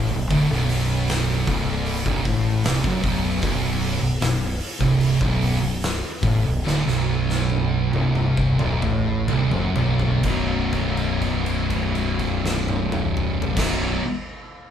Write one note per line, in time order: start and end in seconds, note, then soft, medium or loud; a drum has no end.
0.00 0.10 A2 loud
0.11 0.29 B0 medium
0.11 0.30 B1 medium
0.30 0.49 D1 loud
0.30 0.49 D2 loud
0.30 kick loud
0.30 open hi-hat medium
0.50 1.44 B0 loud
0.50 1.47 B1 loud
0.50 snare soft
0.69 open hi-hat medium
1.08 snare loud
1.08 open hi-hat medium
1.47 2.02 C1 loud
1.47 2.06 C2 loud
1.47 kick loud
1.47 open hi-hat medium
1.86 open hi-hat medium
2.06 2.25 B0 loud
2.06 2.25 B1 loud
2.06 kick loud
2.25 2.62 A1 loud
2.25 2.65 A2 loud
2.25 kick loud
2.25 open hi-hat medium
2.64 2.83 C1 medium
2.64 2.84 C2 loud
2.64 snare loud
2.64 open hi-hat medium
2.84 3.03 F#1 medium
2.84 3.04 F#2 loud
2.84 kick loud
3.03 3.40 B0 medium
3.03 3.42 B1 loud
3.03 kick loud
3.03 open hi-hat medium
3.42 3.98 B0 loud
3.42 4.00 B1 loud
3.42 kick loud
3.42 open hi-hat loud
3.81 open hi-hat medium
4.02 4.21 B0 medium
4.02 4.21 B1 medium
4.20 4.59 B0 medium
4.20 4.54 B1 medium
4.20 snare loud
4.20 open hi-hat medium
4.61 open hi-hat medium
4.80 5.18 C1 loud
4.80 5.20 C2 loud
4.80 kick loud
5.00 open hi-hat medium
5.21 5.59 B0 loud
5.21 5.61 B1 loud
5.21 kick loud
5.41 open hi-hat medium
5.62 6.00 B0 medium
5.62 5.95 B1 medium
5.82 snare loud
5.82 open hi-hat medium
6.23 6.42 A1 medium
6.23 6.43 A2 loud
6.23 kick loud
6.23 open hi-hat medium
6.45 6.64 B0 medium
6.45 6.64 B1 medium
6.64 6.85 D1 loud
6.64 6.84 D2 loud
6.64 snare medium
6.86 7.90 B0 medium
6.86 7.92 B1 loud
6.86 snare medium
7.30 snare medium
7.50 high tom medium
7.93 8.57 C1 loud
7.93 8.58 C2 loud
7.93 high tom medium
8.15 mid tom medium
8.37 kick loud
8.59 8.81 B0 loud
8.59 8.81 B1 loud
8.59 mid tom medium
8.82 9.26 A1 loud
8.82 9.27 A2 loud
8.82 mid tom loud
9.28 9.51 C1 medium
9.28 9.51 C2 loud
9.28 mid tom loud
9.51 9.75 F#1 medium
9.51 9.75 F#2 medium
9.51 floor tom medium
9.76 10.21 B0 medium
9.76 10.23 B1 loud
9.76 floor tom loud
9.99 floor tom medium
10.23 13.41 B0 medium
10.23 13.55 B1 loud
10.23 13.56 F#2 loud
10.23 13.57 B2 loud
10.23 kick loud
10.23 crash medium
10.27 13.58 F#3 loud
10.27 13.59 D#4 loud
10.73 kick medium
10.73 crash soft
10.97 crash soft
11.22 kick medium
11.22 crash soft
11.46 crash medium
11.70 kick medium
11.70 crash medium
11.95 crash medium
12.19 kick medium
12.19 crash soft
12.46 snare loud
12.68 high tom loud
12.92 mid tom loud
13.17 mid tom loud
13.42 floor tom loud
13.55 13.98 B0 loud
13.55 14.00 B1 medium
13.55 14.01 F#2 loud
13.55 14.01 B2 loud
13.55 14.02 F#3 medium
13.55 14.02 D#4 loud
13.55 kick loud
13.55 snare loud
13.55 crash loud